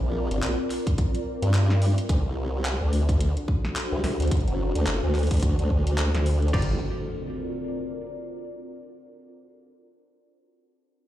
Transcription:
0.00 0.28 A#1 loud
0.00 3.89 C4 medium
0.00 2.09 F4 medium
0.00 2.09 A#4 medium
0.00 3.34 D5 medium
0.31 0.41 G1 loud
0.31 closed hi-hat medium
0.43 0.56 A#1 loud
0.43 clap loud
0.43 closed hi-hat medium
0.70 clap soft
0.70 open hi-hat medium
0.87 kick loud
0.87 closed hi-hat soft
0.98 kick loud
0.98 closed hi-hat medium
1.15 closed hi-hat soft
1.42 1.95 G2 loud
1.42 closed hi-hat soft
1.54 clap loud
1.54 closed hi-hat medium
1.70 snare medium
1.82 open hi-hat medium
1.98 closed hi-hat soft
2.09 2.23 D2 loud
2.09 6.54 D4 loud
2.09 kick loud
2.09 closed hi-hat medium
2.14 6.54 F#4 medium
2.25 2.78 C2 loud
2.44 6.54 A4 medium
2.53 6.54 C5 medium
2.65 clap loud
2.65 closed hi-hat medium
2.81 3.34 D2 loud
2.93 open hi-hat medium
3.09 kick loud
3.09 closed hi-hat soft
3.21 closed hi-hat medium
3.37 closed hi-hat soft
3.48 kick loud
3.65 snare medium
3.76 clap loud
3.76 closed hi-hat medium
3.92 4.02 C2 loud
4.04 4.17 C2 loud
4.04 snare medium
4.04 open hi-hat medium
4.20 4.30 D2 loud
4.20 closed hi-hat soft
4.22 closed hi-hat soft
4.27 4.45 D2 loud
4.27 kick loud
4.27 closed hi-hat soft
4.31 closed hi-hat medium
4.37 closed hi-hat soft
4.41 closed hi-hat soft
4.48 4.73 F#1 loud
4.48 closed hi-hat soft
4.75 4.85 D2 loud
4.75 closed hi-hat medium
4.87 5.01 F#1 loud
4.87 clap loud
4.87 closed hi-hat medium
5.03 5.29 D2 loud
5.15 clap soft
5.15 open hi-hat soft
5.19 open hi-hat soft
5.23 open hi-hat soft
5.27 open hi-hat soft
5.31 5.56 D2 loud
5.31 kick loud
5.31 closed hi-hat medium
5.31 open hi-hat soft
5.34 open hi-hat soft
5.37 open hi-hat medium
5.40 kick loud
5.40 closed hi-hat medium
5.40 open hi-hat medium
5.59 6.12 D2 medium
5.59 closed hi-hat soft
5.70 kick medium
5.87 closed hi-hat medium
5.98 clap loud
5.98 closed hi-hat medium
6.14 6.52 D2 loud
6.14 snare medium
6.14 closed hi-hat soft
6.26 open hi-hat medium
6.42 closed hi-hat soft
6.48 closed hi-hat soft
6.53 6.79 G1 medium
6.53 8.72 C4 medium
6.53 6.75 F4 medium
6.53 6.75 G4 medium
6.53 6.75 A#4 medium
6.53 6.75 D5 medium
6.53 kick loud
6.53 closed hi-hat soft
6.53 crash medium
6.53 impact medium
6.62 8.72 F4 medium
6.62 closed hi-hat soft
6.72 8.72 A#4 medium
6.79 8.72 D5 medium

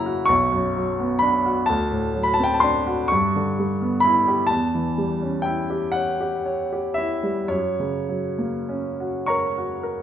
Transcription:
0.00 0.22 F#2 medium
0.00 0.32 C#3 soft
0.00 0.31 F#3 medium
0.00 0.31 A#3 soft
0.00 0.20 E4 medium
0.00 0.32 F#5 loud
0.00 0.27 A#5 loud
0.06 0.29 F#4 medium
0.26 1.64 B1 medium
0.26 1.20 C#6 loud
0.52 0.89 F#2 medium
0.77 1.13 F#3 medium
1.00 1.36 B3 medium
1.19 1.59 D4 medium
1.19 1.66 B5 loud
1.46 1.68 F#4 medium
1.66 3.07 D2 medium
1.66 2.22 A5 loud
1.92 2.29 A2 medium
2.15 2.52 F#3 medium
2.23 2.33 B5 medium
2.34 2.43 A5 medium
2.39 2.77 C4 soft
2.44 2.53 G5 medium
2.54 2.63 A5 medium
2.60 3.01 D4 medium
2.60 3.09 C6 loud
2.87 3.10 F#4 medium
3.08 4.47 G2 medium
3.08 4.02 C#6 loud
3.36 3.72 D3 medium
3.59 3.95 G3 medium
3.82 4.18 B3 medium
4.00 4.41 E4 medium
4.00 4.48 B5 loud
4.28 4.51 G4 medium
4.47 7.48 E2 medium
4.47 5.44 A5 loud
4.75 5.12 E3 medium
4.98 5.36 G3 medium
5.22 5.60 C#4 soft
5.42 5.85 E4 medium
5.42 5.93 G5 medium
5.70 6.10 G4 medium
5.92 6.36 C#5 medium
5.92 6.96 F#5 medium
6.21 6.61 G4 medium
6.46 6.87 C#5 medium
6.73 7.14 G4 medium
6.94 7.41 E4 medium
6.94 7.50 E5 medium
7.23 7.51 G3 soft
7.48 10.03 F#2 medium
7.48 9.26 C#5 medium
7.80 8.28 C#3 soft
8.09 8.58 F#3 soft
8.38 8.88 A#3 soft
8.69 9.17 C#4 soft
9.00 9.46 F#4 soft
9.26 9.74 A#4 medium
9.26 10.03 C#5 medium
9.26 10.03 A#5 medium
9.26 10.03 C#6 medium
9.58 10.01 F#4 soft
9.83 10.03 A#4 soft

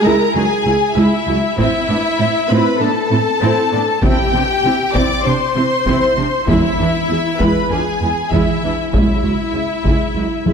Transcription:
0.04 0.13 C#2 medium
0.04 0.33 G#3 medium
0.04 0.33 E4 medium
0.04 0.35 A#4 medium
0.04 0.36 A#5 medium
0.34 0.44 C#2 soft
0.34 0.42 F#3 medium
0.34 0.43 D#4 soft
0.34 0.97 G#4 medium
0.34 0.95 G#5 medium
0.66 0.74 C#2 soft
0.66 0.74 G#3 soft
0.66 0.74 E4 soft
0.96 1.04 C#2 medium
0.96 1.25 G#3 medium
0.96 1.25 E4 medium
0.96 1.58 E4 medium
0.96 1.57 E5 medium
1.27 1.35 C#2 medium
1.27 1.35 F#3 medium
1.27 1.35 E4 soft
1.57 1.65 A2 medium
1.57 1.86 C4 medium
1.57 1.87 E4 medium
1.57 2.48 E4 medium
1.57 2.48 E5 medium
1.57 taiko medium
1.88 1.97 A2 soft
1.88 1.97 B3 soft
1.88 1.96 D4 soft
2.18 2.27 A2 soft
2.18 2.26 C4 soft
2.18 2.27 E4 soft
2.49 2.58 A2 medium
2.49 2.78 C4 medium
2.49 2.78 E4 medium
2.49 2.80 B4 medium
2.49 2.81 B5 medium
2.80 2.88 A2 soft
2.80 2.88 B3 soft
2.80 2.88 D4 soft
2.80 4.03 A4 medium
2.80 4.03 A5 medium
3.11 3.19 A2 soft
3.11 3.19 C4 soft
3.11 3.19 E4 soft
3.41 3.50 A2 medium
3.41 3.70 C4 medium
3.41 3.70 E4 medium
3.72 3.81 A2 soft
3.72 3.81 B3 soft
3.72 3.80 D4 medium
4.02 4.10 C3 medium
4.02 4.31 C4 medium
4.02 4.31 E4 medium
4.02 4.93 G4 medium
4.02 4.93 G5 medium
4.02 taiko medium
4.33 4.41 C3 soft
4.33 4.41 B3 soft
4.33 4.41 D4 soft
4.64 4.72 C3 soft
4.64 4.72 C4 soft
4.64 4.72 E4 soft
4.94 5.02 C3 medium
4.94 5.23 C4 medium
4.94 5.23 E4 medium
4.94 5.25 D5 medium
4.94 5.25 D6 medium
4.94 taiko medium
5.25 5.34 C3 soft
5.25 5.33 C4 soft
5.25 5.33 D4 soft
5.25 6.48 C5 medium
5.25 6.48 C6 medium
5.55 5.64 C3 soft
5.55 5.63 C4 soft
5.55 5.64 E4 soft
5.86 5.95 C3 medium
5.86 6.15 C4 soft
5.86 6.15 E4 soft
5.86 taiko medium
6.17 6.25 C3 soft
6.17 6.26 C4 soft
6.17 6.25 D4 soft
6.48 6.57 E2 medium
6.48 6.77 G#3 soft
6.48 6.77 E4 medium
6.48 7.38 E4 medium
6.48 7.38 E5 medium
6.48 taiko medium
6.78 6.87 E2 soft
6.78 6.87 E3 soft
6.78 6.86 D4 soft
7.09 7.17 E2 soft
7.09 7.18 G#3 soft
7.09 7.18 E4 soft
7.40 7.48 E2 medium
7.40 7.68 G#3 soft
7.40 7.69 E4 medium
7.40 7.71 B4 medium
7.40 7.71 B5 medium
7.40 taiko medium
7.70 7.78 E2 soft
7.70 7.80 D4 soft
7.70 7.80 F4 soft
7.70 8.32 G#4 soft
7.70 8.31 G#5 medium
8.01 8.09 E2 soft
8.01 8.11 G#3 soft
8.01 8.11 E4 soft
8.31 8.39 E2 soft
8.31 8.60 G#3 soft
8.31 8.60 E4 soft
8.31 8.92 E4 soft
8.31 8.91 E5 medium
8.31 taiko medium
8.62 8.70 E2 soft
8.62 8.71 E3 soft
8.62 8.71 D4 soft
8.92 9.01 C#2 soft
8.92 9.21 G#3 soft
8.92 9.21 E4 soft
8.92 10.53 E4 medium
8.92 10.53 E5 medium
8.92 taiko medium
9.23 9.31 C#2 soft
9.23 9.31 F#3 soft
9.23 9.31 E4 soft
9.54 9.62 C#2 soft
9.54 9.62 G#3 soft
9.54 9.62 E4 soft
9.85 9.93 C#2 soft
9.85 10.13 G#3 soft
9.85 10.13 E4 soft
9.85 taiko medium
10.16 10.24 C#2 soft
10.16 10.24 F#3 soft
10.16 10.24 E4 soft
10.46 10.53 C#2 soft
10.46 10.53 G#3 soft
10.46 10.53 E4 soft
10.46 taiko high medium

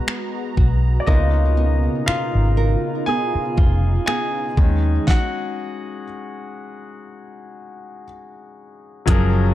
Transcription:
0.00 1.04 G#3 medium
0.00 1.07 G#3 medium
0.00 1.04 B3 medium
0.00 1.08 B3 medium
0.00 0.56 F#4 medium
0.00 1.04 F#4 medium
0.00 1.06 A#4 medium
0.00 1.09 B4 medium
0.00 4.54 A#5 medium
0.07 1.57 B3 medium
0.07 finger snap loud
0.57 0.97 B1 medium
0.57 1.18 F#4 medium
0.57 kick loud
1.00 1.07 D5 medium
1.06 1.87 C#2 medium
1.06 5.03 B2 medium
1.06 4.57 C#3 medium
1.06 4.54 C#3 medium
1.06 2.53 A#3 medium
1.06 2.54 B3 soft
1.06 5.03 D#4 medium
1.06 2.04 D#4 medium
1.06 4.54 F4 medium
1.06 2.07 F4 medium
1.06 2.56 A#4 medium
1.06 2.10 D#5 medium
1.06 kick medium
1.57 3.07 B3 medium
2.06 3.56 F4 medium
2.06 3.04 F4 medium
2.06 3.10 F5 medium
2.06 finger snap loud
2.06 muted fingered electric bass stroke soft
2.35 2.75 G#1 medium
2.57 4.68 A#4 medium
3.06 4.07 B3 medium
3.06 4.04 G#4 medium
3.06 4.05 G#5 loud
3.35 muted fingered electric bass stroke soft
3.57 3.97 F1 medium
3.57 4.68 F4 medium
3.57 kick loud
4.06 5.68 B3 medium
4.06 5.04 G#4 medium
4.06 5.10 G#5 medium
4.06 finger snap loud
4.57 4.97 D#2 medium
4.57 5.18 D#3 medium
4.57 6.03 G#3 medium
4.57 5.07 G#3 medium
4.57 6.04 C#4 medium
4.57 6.04 D#4 medium
4.57 kick loud
5.07 8.04 F#4 medium
5.07 8.03 F#5 medium
5.07 kick loud
5.07 snare medium
9.06 9.54 F#1 loud
9.06 9.54 F3 medium
9.06 9.54 F#3 medium
9.06 9.54 G#3 medium
9.06 9.54 C#4 medium
9.06 9.54 G#4 medium
9.06 9.54 A#4 medium
9.06 kick loud
9.06 closed hi-hat medium
9.10 9.54 A#4 medium

